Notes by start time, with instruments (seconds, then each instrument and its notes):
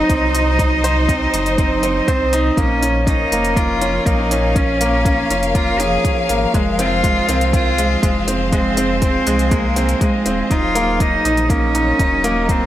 Already playing: string section F#3 D#4 C5 D#5, upright piano C4 D#4 C5, cello D#4
0.09 sub bass C2, upright piano C4, kick, closed hi-hat
0.34 upright piano D#4, closed hi-hat
0.59 upright piano D#4, kick, closed hi-hat
0.84 upright piano C5, closed hi-hat
1.09 upright piano C4, kick, closed hi-hat
1.33 sub bass F#1, upright piano D#4, closed hi-hat
1.46 closed hi-hat
1.58 upright piano C4, kick, closed hi-hat
1.83 upright piano C4, closed hi-hat
2.07 cello C4, upright piano C5, kick, closed hi-hat
2.20 sub bass C2
2.33 upright piano D#4, closed hi-hat
2.57 sub bass A#1, string section F3, upright piano A#3, cello C#4, kick, closed hi-hat
2.82 upright piano C#4, closed hi-hat
2.99 string section C#4
3.06 upright piano C#4, cello D#4, string section A#4, kick, closed hi-hat
3.27 string section F5
3.32 sub bass F1, upright piano A#3, closed hi-hat
3.45 closed hi-hat
3.56 upright piano A#3, cello F4, kick, closed hi-hat
3.81 upright piano C#4, closed hi-hat
4.06 sub bass A#1, upright piano A#3, cello D#4, kick, closed hi-hat
4.31 upright piano C#4, closed hi-hat
4.56 cello C#4, upright piano C#4, kick, closed hi-hat
4.81 upright piano A#3, closed hi-hat
5.05 upright piano A#3, kick, closed hi-hat
5.30 sub bass F1, upright piano C#4, closed hi-hat
5.43 closed hi-hat
5.55 upright piano A#3, cello F4, kick, closed hi-hat
5.80 upright piano C#4, cello G#4, closed hi-hat
6.05 upright piano C#4, kick, closed hi-hat
6.29 sub bass G#1, upright piano A#3, closed hi-hat
6.54 sub bass F1, upright piano G#3, kick, closed hi-hat
6.79 upright piano C4, cello F4, closed hi-hat
6.90 string section C5
7.04 upright piano G#3, kick, closed hi-hat
7.29 sub bass C2, upright piano C4, closed hi-hat
7.41 closed hi-hat
7.53 upright piano C4, cello F4, kick, closed hi-hat
7.78 upright piano G#3, string section G#4, closed hi-hat
8.03 sub bass F1, upright piano G#3, kick, closed hi-hat
8.28 upright piano C4, closed hi-hat
8.52 upright piano G#3, cello C4, kick, closed hi-hat
8.77 upright piano C4, closed hi-hat
9.02 upright piano C4, cello C4, kick, closed hi-hat
9.27 sub bass C2, upright piano G#3, closed hi-hat
9.39 closed hi-hat
9.51 upright piano G#3, cello A#3, kick, closed hi-hat
9.76 upright piano C4, closed hi-hat
9.89 closed hi-hat
10.01 upright piano G#3, cello G#3, kick, closed hi-hat
10.26 sub bass D#1, upright piano C4, closed hi-hat
10.50 sub bass D#1, string section F#3, upright piano D#4, cello F4, kick, closed hi-hat
10.75 upright piano A#3, closed hi-hat
10.99 upright piano A#3, string section D#4, cello D#4, kick, closed hi-hat
11.25 sub bass A#1, upright piano D#4, closed hi-hat
11.37 closed hi-hat
11.50 upright piano A#3, cello C#4, kick, closed hi-hat
11.56 string section A#4
11.74 upright piano D#4, closed hi-hat
11.94 string section D#5
11.99 sub bass D#1, upright piano D#4, kick, closed hi-hat
12.24 upright piano A#3, closed hi-hat
12.49 upright piano A#3, cello C4, kick, closed hi-hat